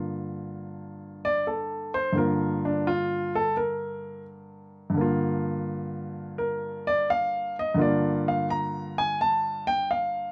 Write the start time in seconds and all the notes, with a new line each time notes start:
Already playing: G2 D3 A#3 F4
1.25 D5
1.47 A4
1.94 C5
2.12 G2 D3 A#3
2.18 F4 A#4
2.65 D4
2.87 F4
3.35 A4
3.57 A#4
4.90 G2
4.94 D3 A#3
5.01 F4
6.38 A#4
6.87 D5
7.10 F5
7.59 D#5
7.74 G2 D3 A#3
7.79 F4 D5
8.28 F5
8.50 A#5
8.98 G#5
9.21 A5
9.67 G5
9.91 F5